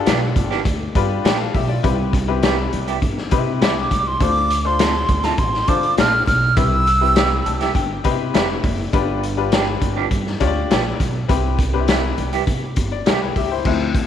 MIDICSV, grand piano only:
0, 0, Header, 1, 2, 480
1, 0, Start_track
1, 0, Tempo, 590551
1, 1497, Time_signature, 4, 2, 24, 8
1, 11435, End_track
2, 0, Start_track
2, 0, Title_t, "Grand piano"
2, 0, Program_c, 0, 0
2, 0, Note_on_c, 0, 62, 85
2, 0, Note_on_c, 0, 65, 78
2, 0, Note_on_c, 0, 67, 64
2, 0, Note_on_c, 0, 69, 84
2, 443, Note_off_c, 0, 62, 0
2, 443, Note_off_c, 0, 65, 0
2, 443, Note_off_c, 0, 67, 0
2, 471, Note_off_c, 0, 69, 0
2, 776, Note_on_c, 0, 62, 84
2, 778, Note_on_c, 0, 65, 75
2, 780, Note_on_c, 0, 67, 76
2, 781, Note_on_c, 0, 71, 95
2, 1012, Note_off_c, 0, 71, 0
2, 1017, Note_off_c, 0, 65, 0
2, 1018, Note_on_c, 0, 79, 58
2, 1019, Note_off_c, 0, 67, 0
2, 1024, Note_on_c, 0, 71, 52
2, 1132, Note_off_c, 0, 79, 0
2, 1135, Note_off_c, 0, 71, 0
2, 1136, Note_on_c, 0, 77, 69
2, 1138, Note_on_c, 0, 69, 58
2, 1212, Note_off_c, 0, 62, 0
2, 1251, Note_off_c, 0, 77, 0
2, 1252, Note_off_c, 0, 69, 0
2, 1259, Note_on_c, 0, 76, 72
2, 1262, Note_on_c, 0, 67, 62
2, 1371, Note_on_c, 0, 74, 54
2, 1372, Note_off_c, 0, 76, 0
2, 1374, Note_off_c, 0, 67, 0
2, 1379, Note_on_c, 0, 65, 51
2, 1489, Note_on_c, 0, 60, 84
2, 1491, Note_on_c, 0, 64, 74
2, 1492, Note_on_c, 0, 67, 73
2, 1494, Note_on_c, 0, 71, 92
2, 1602, Note_off_c, 0, 74, 0
2, 1606, Note_off_c, 0, 65, 0
2, 1711, Note_off_c, 0, 60, 0
2, 1712, Note_off_c, 0, 64, 0
2, 1713, Note_off_c, 0, 67, 0
2, 1713, Note_off_c, 0, 71, 0
2, 1852, Note_on_c, 0, 60, 75
2, 1852, Note_on_c, 0, 64, 71
2, 1856, Note_on_c, 0, 67, 72
2, 1857, Note_on_c, 0, 71, 87
2, 2363, Note_off_c, 0, 60, 0
2, 2363, Note_off_c, 0, 64, 0
2, 2365, Note_off_c, 0, 67, 0
2, 2366, Note_off_c, 0, 71, 0
2, 2693, Note_on_c, 0, 60, 87
2, 2693, Note_on_c, 0, 67, 76
2, 2694, Note_on_c, 0, 63, 56
2, 2698, Note_on_c, 0, 71, 98
2, 2747, Note_on_c, 0, 64, 80
2, 2749, Note_off_c, 0, 63, 0
2, 3131, Note_off_c, 0, 67, 0
2, 3132, Note_off_c, 0, 60, 0
2, 3134, Note_off_c, 0, 71, 0
2, 3158, Note_off_c, 0, 64, 0
2, 3415, Note_on_c, 0, 62, 66
2, 3417, Note_on_c, 0, 65, 58
2, 3419, Note_on_c, 0, 69, 60
2, 3419, Note_on_c, 0, 72, 73
2, 3635, Note_off_c, 0, 62, 0
2, 3636, Note_off_c, 0, 65, 0
2, 3637, Note_off_c, 0, 69, 0
2, 3637, Note_off_c, 0, 72, 0
2, 3778, Note_on_c, 0, 62, 65
2, 3778, Note_on_c, 0, 69, 58
2, 3780, Note_on_c, 0, 65, 56
2, 3780, Note_on_c, 0, 72, 64
2, 4287, Note_off_c, 0, 62, 0
2, 4287, Note_off_c, 0, 69, 0
2, 4288, Note_off_c, 0, 65, 0
2, 4288, Note_off_c, 0, 72, 0
2, 4617, Note_on_c, 0, 62, 70
2, 4619, Note_on_c, 0, 65, 70
2, 4620, Note_on_c, 0, 69, 61
2, 4621, Note_on_c, 0, 72, 85
2, 5054, Note_off_c, 0, 62, 0
2, 5055, Note_off_c, 0, 65, 0
2, 5055, Note_off_c, 0, 69, 0
2, 5056, Note_off_c, 0, 72, 0
2, 5336, Note_on_c, 0, 60, 69
2, 5337, Note_on_c, 0, 64, 62
2, 5337, Note_on_c, 0, 67, 65
2, 5340, Note_on_c, 0, 71, 79
2, 5555, Note_off_c, 0, 60, 0
2, 5556, Note_off_c, 0, 64, 0
2, 5556, Note_off_c, 0, 67, 0
2, 5558, Note_off_c, 0, 71, 0
2, 5696, Note_on_c, 0, 60, 67
2, 5698, Note_on_c, 0, 64, 67
2, 5699, Note_on_c, 0, 67, 57
2, 5702, Note_on_c, 0, 71, 68
2, 6063, Note_on_c, 0, 81, 63
2, 6206, Note_off_c, 0, 60, 0
2, 6207, Note_off_c, 0, 64, 0
2, 6207, Note_off_c, 0, 67, 0
2, 6209, Note_off_c, 0, 71, 0
2, 6285, Note_off_c, 0, 81, 0
2, 6299, Note_on_c, 0, 79, 73
2, 6535, Note_on_c, 0, 60, 89
2, 6536, Note_on_c, 0, 63, 65
2, 6538, Note_on_c, 0, 67, 76
2, 6541, Note_on_c, 0, 71, 102
2, 6589, Note_on_c, 0, 64, 77
2, 6591, Note_off_c, 0, 63, 0
2, 6747, Note_off_c, 0, 79, 0
2, 6781, Note_on_c, 0, 76, 65
2, 6973, Note_off_c, 0, 60, 0
2, 6974, Note_off_c, 0, 67, 0
2, 6976, Note_off_c, 0, 71, 0
2, 7000, Note_off_c, 0, 64, 0
2, 7228, Note_off_c, 0, 76, 0
2, 7257, Note_on_c, 0, 62, 78
2, 7262, Note_on_c, 0, 65, 75
2, 7262, Note_on_c, 0, 67, 82
2, 7265, Note_on_c, 0, 71, 96
2, 7476, Note_off_c, 0, 62, 0
2, 7478, Note_off_c, 0, 65, 0
2, 7478, Note_off_c, 0, 67, 0
2, 7480, Note_off_c, 0, 71, 0
2, 7617, Note_on_c, 0, 62, 69
2, 7618, Note_on_c, 0, 65, 72
2, 7623, Note_on_c, 0, 67, 71
2, 7623, Note_on_c, 0, 71, 89
2, 8126, Note_off_c, 0, 62, 0
2, 8126, Note_off_c, 0, 65, 0
2, 8129, Note_off_c, 0, 67, 0
2, 8129, Note_off_c, 0, 71, 0
2, 8456, Note_on_c, 0, 62, 95
2, 8457, Note_on_c, 0, 65, 81
2, 8458, Note_on_c, 0, 67, 80
2, 8459, Note_on_c, 0, 73, 80
2, 8512, Note_off_c, 0, 73, 0
2, 8512, Note_on_c, 0, 74, 98
2, 8892, Note_off_c, 0, 62, 0
2, 8893, Note_off_c, 0, 65, 0
2, 8894, Note_off_c, 0, 67, 0
2, 8920, Note_off_c, 0, 74, 0
2, 9171, Note_on_c, 0, 60, 90
2, 9174, Note_on_c, 0, 64, 69
2, 9175, Note_on_c, 0, 71, 89
2, 9177, Note_on_c, 0, 67, 82
2, 9392, Note_off_c, 0, 60, 0
2, 9394, Note_off_c, 0, 64, 0
2, 9394, Note_off_c, 0, 71, 0
2, 9395, Note_off_c, 0, 67, 0
2, 9537, Note_on_c, 0, 60, 74
2, 9538, Note_on_c, 0, 62, 53
2, 9540, Note_on_c, 0, 67, 74
2, 9540, Note_on_c, 0, 71, 83
2, 9591, Note_off_c, 0, 62, 0
2, 9591, Note_on_c, 0, 64, 69
2, 10045, Note_off_c, 0, 60, 0
2, 10046, Note_off_c, 0, 67, 0
2, 10046, Note_off_c, 0, 71, 0
2, 10072, Note_off_c, 0, 64, 0
2, 10500, Note_on_c, 0, 74, 62
2, 10612, Note_off_c, 0, 74, 0
2, 10619, Note_on_c, 0, 76, 59
2, 10623, Note_on_c, 0, 67, 56
2, 10732, Note_off_c, 0, 76, 0
2, 10734, Note_off_c, 0, 67, 0
2, 10741, Note_on_c, 0, 79, 65
2, 10745, Note_on_c, 0, 71, 57
2, 10853, Note_off_c, 0, 79, 0
2, 10855, Note_off_c, 0, 71, 0
2, 10864, Note_on_c, 0, 76, 71
2, 10869, Note_on_c, 0, 67, 59
2, 10975, Note_off_c, 0, 76, 0
2, 10977, Note_off_c, 0, 67, 0
2, 10984, Note_on_c, 0, 72, 58
2, 10989, Note_on_c, 0, 64, 47
2, 11098, Note_off_c, 0, 64, 0
2, 11098, Note_on_c, 0, 53, 46
2, 11103, Note_on_c, 0, 60, 49
2, 11110, Note_on_c, 0, 64, 60
2, 11208, Note_off_c, 0, 72, 0
2, 11417, Note_off_c, 0, 53, 0
2, 11419, Note_off_c, 0, 60, 0
2, 11423, Note_off_c, 0, 64, 0
2, 11435, End_track
0, 0, End_of_file